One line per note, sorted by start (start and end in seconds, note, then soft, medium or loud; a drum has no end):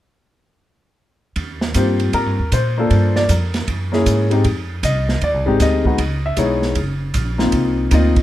1.36 1.74 D#2 medium
1.36 kick soft
1.36 ride soft
1.61 snare soft
1.74 2.12 G2 medium
1.74 2.33 A#3 soft
1.74 2.34 C4 soft
1.74 2.34 F4 soft
1.74 2.35 G4 medium
1.74 2.12 C5 medium
1.74 kick soft
1.74 hi-hat pedal medium
1.74 ride medium
2.00 ride soft
2.13 2.26 G#2 medium
2.13 2.50 A#4 medium
2.13 kick soft
2.13 ride soft
2.26 2.39 G2 soft
2.39 2.51 D#2 medium
2.52 2.89 A#2 medium
2.52 3.12 C5 medium
2.52 kick soft
2.52 hi-hat pedal soft
2.52 ride medium
2.78 3.27 A#3 medium
2.78 3.27 D4 medium
2.78 3.27 F4 medium
2.78 3.28 A4 medium
2.90 3.28 G2 medium
2.90 kick soft
2.90 ride soft
3.16 3.29 D5 medium
3.16 snare soft
3.29 3.66 F2 medium
3.29 3.66 A#4 soft
3.29 kick soft
3.29 hi-hat pedal soft
3.29 ride medium
3.54 snare soft
3.54 ride soft
3.68 4.05 F#2 medium
3.68 kick soft
3.68 ride soft
3.92 4.28 A#3 medium
3.92 4.29 C#4 medium
3.92 4.29 E4 medium
3.92 4.29 G#4 medium
3.92 snare soft
4.06 4.43 G#2 medium
4.06 kick soft
4.06 hi-hat pedal soft
4.06 ride medium
4.30 4.43 G#3 medium
4.30 4.43 C4 medium
4.30 4.44 D#4 medium
4.30 4.44 G4 medium
4.30 ride soft
4.44 4.82 F2 medium
4.44 kick soft
4.44 ride soft
4.83 5.21 C2 medium
4.83 5.20 D#5 medium
4.83 kick soft
4.83 hi-hat pedal medium
4.83 ride medium
5.09 snare soft
5.21 5.34 D#2 medium
5.21 5.59 D5 medium
5.21 kick soft
5.21 ride soft
5.34 5.46 C2 soft
5.46 5.59 G#1 medium
5.46 5.82 G#3 medium
5.46 5.83 C4 medium
5.46 5.83 D#4 medium
5.46 5.83 G4 medium
5.60 5.97 D2 medium
5.60 6.21 D#5 medium
5.60 kick soft
5.60 snare soft
5.60 hi-hat pedal soft
5.60 ride medium
5.84 5.97 G#3 medium
5.84 5.98 B3 soft
5.84 5.98 D#4 soft
5.84 5.98 F#4 medium
5.84 kick soft
5.98 6.36 C#2 medium
5.98 kick soft
5.98 ride medium
6.26 6.38 E5 medium
6.37 6.75 B1 medium
6.37 6.76 G#3 soft
6.37 6.76 B3 soft
6.37 6.76 D#4 soft
6.37 6.77 E4 soft
6.37 6.74 C#5 medium
6.37 kick soft
6.37 hi-hat pedal soft
6.37 ride medium
6.62 snare soft
6.75 7.13 F#1 medium
6.75 kick soft
6.75 ride soft
7.14 7.52 A#1 medium
7.14 kick soft
7.14 hi-hat pedal soft
7.14 ride medium
7.38 7.88 A#3 medium
7.38 7.88 C4 medium
7.38 7.89 D#4 soft
7.38 7.89 F4 medium
7.38 snare soft
7.52 7.90 C2 medium
7.52 kick soft
7.52 ride medium
7.91 8.23 D2 medium
7.91 8.14 A#3 medium
7.91 8.14 C4 medium
7.91 8.15 D#4 medium
7.91 8.15 F4 medium
7.91 8.23 D#5 medium
7.91 kick soft
7.91 hi-hat pedal soft
7.91 ride medium
8.16 kick medium
8.16 ride soft